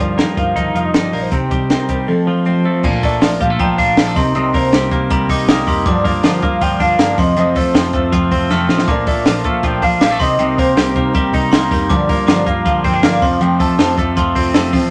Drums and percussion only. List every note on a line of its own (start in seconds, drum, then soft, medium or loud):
0.00 closed hi-hat medium
0.19 snare loud
0.19 closed hi-hat medium
0.37 kick medium
0.37 closed hi-hat medium
0.56 kick medium
0.56 closed hi-hat medium
0.76 closed hi-hat medium
0.94 snare loud
0.94 closed hi-hat medium
1.13 open hi-hat medium
1.32 kick loud
1.32 closed hi-hat medium
1.51 kick medium
1.51 closed hi-hat medium
1.70 snare loud
1.70 closed hi-hat medium
1.89 kick medium
1.89 closed hi-hat medium
2.84 kick loud
2.84 crash medium
3.03 kick medium
3.03 hi-hat pedal medium
3.03 open hi-hat medium
3.21 snare loud
3.21 hi-hat pedal medium
3.21 open hi-hat medium
3.41 kick medium
3.41 hi-hat pedal medium
3.41 open hi-hat medium
3.60 kick medium
3.60 hi-hat pedal medium
3.60 open hi-hat medium
3.78 kick medium
3.78 hi-hat pedal medium
3.78 open hi-hat medium
3.97 snare loud
3.97 hi-hat pedal medium
3.97 open hi-hat loud
4.16 kick loud
4.16 hi-hat pedal medium
4.16 open hi-hat medium
4.35 hi-hat pedal medium
4.35 open hi-hat medium
4.54 kick loud
4.54 hi-hat pedal medium
4.54 open hi-hat medium
4.73 snare loud
4.73 hi-hat pedal medium
4.73 open hi-hat medium
4.91 kick medium
4.91 hi-hat pedal medium
4.91 open hi-hat medium
5.10 kick loud
5.10 hi-hat pedal medium
5.10 open hi-hat medium
5.29 kick medium
5.29 hi-hat pedal medium
5.29 open hi-hat medium
5.48 snare loud
5.48 hi-hat pedal medium
5.48 open hi-hat loud
5.67 kick loud
5.67 hi-hat pedal medium
5.67 open hi-hat medium
5.86 kick loud
5.86 hi-hat pedal medium
5.86 open hi-hat medium
6.05 kick medium
6.05 hi-hat pedal medium
6.05 open hi-hat medium
6.23 snare loud
6.23 hi-hat pedal medium
6.23 open hi-hat medium
6.42 kick loud
6.42 hi-hat pedal medium
6.42 open hi-hat medium
6.61 kick medium
6.61 hi-hat pedal medium
6.61 open hi-hat medium
6.80 kick medium
6.80 hi-hat pedal medium
6.80 open hi-hat medium
6.99 snare loud
6.99 hi-hat pedal medium
6.99 open hi-hat loud
7.18 kick loud
7.18 hi-hat pedal medium
7.18 open hi-hat medium
7.37 hi-hat pedal medium
7.37 open hi-hat medium
7.55 kick loud
7.55 hi-hat pedal medium
7.55 open hi-hat medium
7.75 snare loud
7.75 hi-hat pedal medium
7.75 open hi-hat medium
7.93 kick medium
7.93 hi-hat pedal medium
7.93 open hi-hat medium
8.12 kick loud
8.12 hi-hat pedal medium
8.12 open hi-hat medium
8.31 kick medium
8.31 hi-hat pedal medium
8.31 open hi-hat medium
8.50 snare medium
8.69 snare medium
8.78 snare medium
8.88 kick loud
8.88 hi-hat pedal medium
8.88 open hi-hat medium
9.06 kick loud
9.06 hi-hat pedal medium
9.06 open hi-hat medium
9.25 snare loud
9.25 hi-hat pedal medium
9.25 open hi-hat medium
9.44 kick medium
9.44 hi-hat pedal medium
9.44 open hi-hat medium
9.63 kick medium
9.63 hi-hat pedal medium
9.63 open hi-hat medium
9.82 kick medium
9.82 hi-hat pedal medium
9.82 open hi-hat medium
10.01 snare loud
10.01 hi-hat pedal medium
10.01 open hi-hat loud
10.20 kick loud
10.20 hi-hat pedal medium
10.20 open hi-hat medium
10.39 hi-hat pedal medium
10.39 open hi-hat medium
10.58 kick loud
10.58 hi-hat pedal medium
10.58 open hi-hat medium
10.77 snare loud
10.77 hi-hat pedal medium
10.77 open hi-hat medium
10.96 kick medium
10.96 hi-hat pedal medium
10.96 open hi-hat medium
11.15 kick loud
11.15 hi-hat pedal medium
11.15 open hi-hat loud
11.33 kick medium
11.33 hi-hat pedal medium
11.33 open hi-hat medium
11.53 snare loud
11.53 hi-hat pedal medium
11.53 open hi-hat medium
11.71 kick loud
11.71 hi-hat pedal medium
11.71 open hi-hat medium
11.90 kick loud
11.90 hi-hat pedal medium
11.90 open hi-hat medium
12.09 kick loud
12.09 hi-hat pedal medium
12.09 open hi-hat medium
12.28 snare loud
12.28 hi-hat pedal medium
12.28 open hi-hat medium
12.46 kick medium
12.46 hi-hat pedal medium
12.46 open hi-hat medium
12.66 kick medium
12.66 hi-hat pedal medium
12.66 open hi-hat medium
12.84 kick medium
12.84 hi-hat pedal medium
12.84 open hi-hat medium
13.03 snare loud
13.03 hi-hat pedal medium
13.03 open hi-hat loud
13.22 kick loud
13.22 hi-hat pedal medium
13.22 open hi-hat medium
13.41 hi-hat pedal medium
13.41 open hi-hat medium
13.60 kick medium
13.60 hi-hat pedal medium
13.60 open hi-hat medium
13.79 snare loud
13.79 hi-hat pedal medium
13.79 open hi-hat medium
13.98 kick medium
13.98 hi-hat pedal medium
13.98 open hi-hat medium
14.17 kick medium
14.17 hi-hat pedal medium
14.17 open hi-hat loud
14.35 kick medium
14.35 hi-hat pedal medium
14.35 open hi-hat medium
14.54 snare loud
14.54 hi-hat pedal medium
14.54 open hi-hat loud
14.73 kick medium
14.73 hi-hat pedal medium
14.73 open hi-hat medium